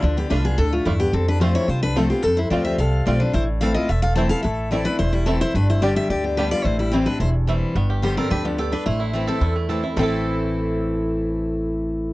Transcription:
<<
  \new Staff \with { instrumentName = "Steel-string acoustic guitar" } { \time 4/4 \key a \minor \tempo 4 = 218 d'8 g'8 b'8 gis'8 a'8 f'8 e'8 g'8 | a'8 b'8 c''8 cis''8 c''8 b'8 a'8 g'8 | a'8 c''8 d''8 e''8 f''4 d''8 b'8 | c''8 r8 f''8 dis''8 e''8 f''8 a''8 f''8 |
e''4 d''8 b'8 c''8 e'8 a'8 c''8 | b'8 c''8 d''8 e''8 d''8 g'8 b'8 d''8 | c''8 e'8 g'8 b'8 c''8 r4. | r4 c''8 bes'8 b'8 d'8 g'8 b'8 |
c''4. a'4 r4. | a'1~ | a'1 | }
  \new Staff \with { instrumentName = "Five-string banjo" } { \time 4/4 \key a \minor r4 <a d' f'>8 r4. <a d' f'>8 r8 | r4 <a f'>8 r4. <a f'>8 r8 | r4 <a f'>8 r4. <a f'>8 r8 | r4 <a e'>8 r4. <a e'>8 r8 |
r4 <a e'>8 r4. <a e'>8 r8 | r4 <b d' g'>8 r4. <b d' g'>8 r8 | r4 <a e'>8 r4. <a e'>8 r8 | b8 g'8 b8 a'8 g'8 b8 a'8 d'8 |
a8 e'8 a8 a'8 e'8 a8 a'8 e'8 | <a c' e' a'>1~ | <a c' e' a'>1 | }
  \new Staff \with { instrumentName = "Resonator guitar played with a steel bar" } { \time 4/4 \key a \minor f8 b8 d'8 b8 d'8 a8 a8 b8 | c'8 d'8 f'8 e'8 f'8 d'8 c'8 b8 | c'8 e'8 f'8 g'8 a'4 f'8 d'8 | e'8 r8 a'8 f'8 a'8 a'8 c''8 a'8 |
a'4 a'8 d'8 e'8 g8 c'8 e'8 | d'8 e'8 g'8 g'8 g'8 b8 d'8 f'8 | e'8 g8 c'8 d'8 e'8 r4. | r4 g'8 c'8 d'8 f8 b8 d'8 |
e'4. c'4 r4. | c'1~ | c'1 | }
  \new Staff \with { instrumentName = "Steel-string acoustic guitar" } { \time 4/4 \key a \minor << { r4 <d a d' f'>8 <d' f'>8 r2 | r4 <f a c' f'>4 r4 <f a c' f'>8 <c' f'>8 | r4 <f a c' f'>4 r4 <f a c' f'>8 <c' f'>8 | r4 <e a c' e'>8 <c' e'>8 r4 <e a c' e'>8 <c' e'>8 |
r4 <e a c' e'>8 <c' e'>8 r4 <e a c' e'>8 <c' e'>8 | r4 <d g b g'>4 r4 <d g b g'>4 | r4 <e g c' e'>8 <c' e'>8 r4 <e g c' e'>4 | r4 <d g b g'>4 r2 |
r4 <e a c' e'>4 r4 <e a c' e'>8 <c' e'>8 | <a, e a c' e'>1~ | <a, e a c' e'>1 | } \\ { d2 a,4 g,4 | f,2 c2 | f,2 c2 | a,2 e,2 |
a,2 e,2 | g,2 d2 | a,2 e,2 | g,2 f,4 g,4 |
a,2 e,2 | r1 | r1 | } >> }
  \new Staff \with { instrumentName = "Upright bass" } { \clef bass \time 4/4 \key a \minor d,4 c,4 d,4 e,4 | f,2 c,2 | f,4 d,4 c,4 b,,4 | a,,2 e,,2 |
a,,2 e,,2 | g,,2 d,2 | a,,2 e,,2 | g,,2 d,2 |
a,,2 e,2 | a,,1~ | a,,1 | }
>>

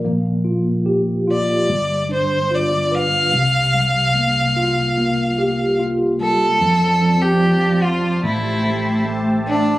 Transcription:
<<
  \new Staff \with { instrumentName = "Analog synth pad" } { \time 4/4 \key f \major \tempo 4 = 73 << { r1 | r1 | <c'' a''>1 | } \\ { r1 | r1 | <f' d''>2 <g' e''>2 | } >> }
  \new Staff \with { instrumentName = "Violin" } { \time 4/4 \key f \major r4. d''4 c''8 d''8 f''8~ | f''2. r8 a'8~ | a'8. g'8. f'8 e'4 r8 d'8 | }
  \new Staff \with { instrumentName = "Tine electric piano" } { \time 4/4 \key f \major bes8 f'8 g'8 f'8 g8 d'8 f'8 b'8 | c8 g8 bes8 f'8 bes8 g'8 f'8 g8 | f8 c'8 f4 a8 a8 a4 | }
  \new Staff \with { instrumentName = "Fretless electric bass" } { \clef bass \time 4/4 \key f \major bes,,2 g,,2 | c,1 | f,2 a,,2 | }
>>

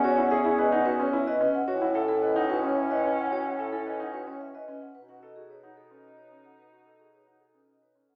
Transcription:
<<
  \new Staff \with { instrumentName = "Vibraphone" } { \time 3/4 \key a \lydian \tempo 4 = 110 cis''16 fis''16 e''16 gis'16 dis''16 fis''16 b'16 cis''16 e''16 dis''16 b'16 fis''16 | cis''16 fis''16 e''16 a'16 dis''16 fis''16 b'16 cis''16 e''16 dis''16 b'16 fis''16 | cis''16 fis''16 e''16 a'16 dis''16 fis''16 b'16 cis''16 e''16 dis''16 b'16 fis''16 | b'16 fis''16 dis''16 gis'16 cis''16 fis''16 a'16 b'16 dis''16 cis''16 a'16 fis''16 |
b'16 fis''16 dis''16 gis'16 cis''16 fis''16 a'16 b'16 dis''16 cis''16 a'16 fis''16 | }
  \new Staff \with { instrumentName = "Grand piano" } { \time 3/4 \key a \lydian fis'16 e'16 gis'16 e'16 b'16 dis'16 fis'16 cis'16 e'16 b'16 cis'16 r16 | fis'16 e'16 a'16 e'16 b'16 dis'16 fis'16 cis'16 r16 b'16 cis'16 r16 | fis'16 e'16 a'16 e'16 b'16 dis'16 fis'16 cis'16 r16 b'16 cis'16 r16 | r16 fis'16 a'16 fis'16 b'16 dis'16 gis'16 cis'16 r16 b'16 cis'16 r16 |
r16 fis'16 a'16 fis'16 b'16 dis'16 gis'16 cis'16 r16 b'16 cis'16 r16 | }
  \new Staff \with { instrumentName = "Soprano saxophone" } { \time 3/4 \key a \lydian cis'2~ cis'8. r16 | cis'2.~ | cis'2~ cis'8. r16 | dis'2.~ |
dis'2~ dis'8. r16 | }
  \new Staff \with { instrumentName = "Bass clarinet" } { \clef bass \time 3/4 \key a \lydian e,2. | a,2.~ | a,2. | b,2.~ |
b,2. | }
>>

